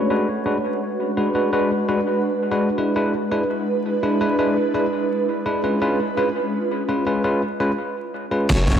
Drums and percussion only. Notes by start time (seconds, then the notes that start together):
8.49 kick, closed hi-hat, crash
8.67 kick, snare, closed hi-hat
8.76 kick, closed hi-hat